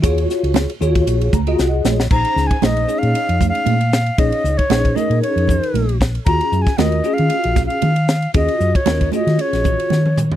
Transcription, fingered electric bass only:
X:1
M:4/4
L:1/16
Q:"Swing 16ths" 1/4=115
K:Ebdor
V:1 name="Fingered electric bass" clef=bass
E,,2 z D,,2 z E,,2 B,,,2 D,,2 C,,2 B,,,2 | [K:Bbm] B,,, z D,, z B,,,2 z B,, z F,,2 z B,,4 | B,,, z D,, z B,,,2 z B,, z F,,2 z B,,,4 | E,, z G,, z E,,2 z E, z B,,,2 z E,4 |
E,, z G,, z E,,2 z E, z B,,,2 z E,4 |]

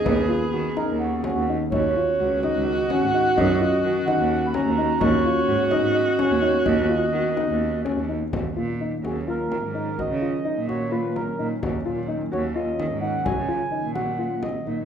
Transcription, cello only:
X:1
M:7/8
L:1/16
Q:1/4=128
K:Ebm
V:1 name="Cello" clef=bass
^D,,2 z2 ^D,2 z D,,4 D,,2 z | E,,2 z2 D,,2 z D,,2 z2 A,,2 z | G,,2 z2 E,2 z E,,4 E,,2 z | ^D,,2 z2 A,,2 z A,,2 z2 D,,2 z |
^D,,2 z2 ^D,2 z D,,4 D,,2 z | E,, z B,,4 E,,4 E, A,,3- | A,, D,2 z2 B,,6- B,, B,,2 | E,, z B,,4 E,,4 E, A,,3- |
A,, D,2 z2 B,,6- B,, B,,2 |]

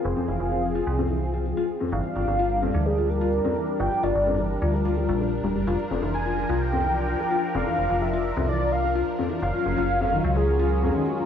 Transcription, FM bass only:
X:1
M:4/4
L:1/16
Q:1/4=128
K:Bbdor
V:1 name="FM bass" clef=bass
F,,, z F,,, F,,,4 C,,6 z3 | G,,, z G,,, G,,,4 =D,,6 z3 | G,,, z G,,, G,,,4 =D,,4 B,,,3 =D,,, G,,, | F,,, z F,,, F,,,4 C,,6 z3 |
F,,, z F,,, F,,,4 C,,6 z3 | _G,,, z G,,, G,,,4 D,,6 z3 |]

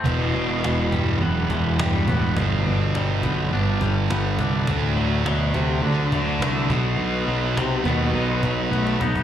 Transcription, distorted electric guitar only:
X:1
M:4/4
L:1/8
Q:1/4=104
K:Em
V:1 name="Distorted electric guitar" clef=bass
[E,,B,,E,]4 [E,,B,,E,]4 | [G,,D,G,]4 [G,,D,G,]4 | [D,A,D]4 [D,A,D]3 [B,,F,B,]- | [B,,F,B,]3 [B,,F,B,]4 z |]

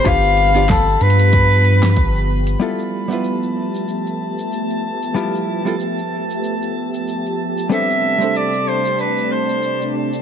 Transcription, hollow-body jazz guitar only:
X:1
M:4/4
L:1/16
Q:"Swing 16ths" 1/4=94
K:Gmix
V:1 name="Hollow-body jazz guitar"
[B,DFGB]3 [B,DFGd] z12 | [G,B,EFA]3 [G,B,EFB]12- [G,B,EFB] | [G,B,EFG]3 [G,B,EFA] z12 | [G,B,CDA]3 [G,A,CDA]12- [G,A,CDA] |]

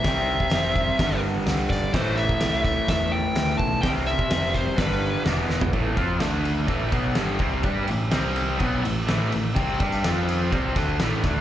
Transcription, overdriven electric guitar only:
X:1
M:4/4
L:1/8
Q:1/4=126
K:Am
V:1 name="Overdriven electric guitar" clef=bass
[C,G,C]4 [G,,D,G,]4 | [A,,E,A,]8 | [C,G,C]4 [G,,D,G,]2 [E,,B,,E,]2 | [A,,E,A,] [F,CF] [D,A,D]2 [A,,E,A,] [B,,^F,B,] [G,,D,G,] [C,G,C] |
[G,DG] [A,,E,] [C,G,C]2 [B,,^F,B,] [A,,E,] [A,,E,A,] [A,,E,] | [C,G,C] [G,DG] [F,CF]2 [C,G,C] [D,A,D] [A,,E,A,] [D,A,D] |]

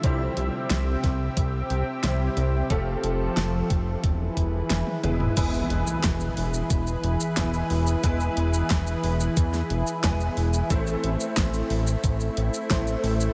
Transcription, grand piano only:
X:1
M:4/4
L:1/8
Q:1/4=90
K:Ephr
V:1 name="Grand piano"
[G,CEGc]6 [G,CEGc]2 | [A,CFGA]4 z3 [^G,B,E^GB] | [^G,B,E^GB]6 [G,B,EGB]2 | [^G,B,E^GB]6 [G,B,EGB]2 |
[A,CEAc]6 [A,CEAc]2 |]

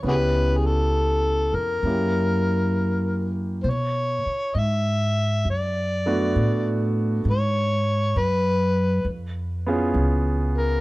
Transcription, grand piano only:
X:1
M:4/4
L:1/8
Q:"Swing" 1/4=67
K:Bdor
V:1 name="Grand piano"
[B,CE=G]4 [^A,CEG]4 | z4 z [A,B,DF]3 | z4 z [B,C^EG]3 |]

